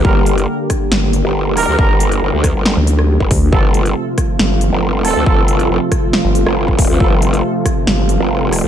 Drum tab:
HH |--xx--x---x---o-|--xx--x---x---o-|--xx--x---x---o-|--xx--x---x---o-|
SD |------r-o-----r-|------r-o--r----|------r-o-----r-|------r-o--r----|
BD |o-----o---------|o-----o------oo-|o-----o---------|o-----o------oo-|

HH |--xx--x---x---o-|
SD |------r-o-----r-|
BD |o-----o---------|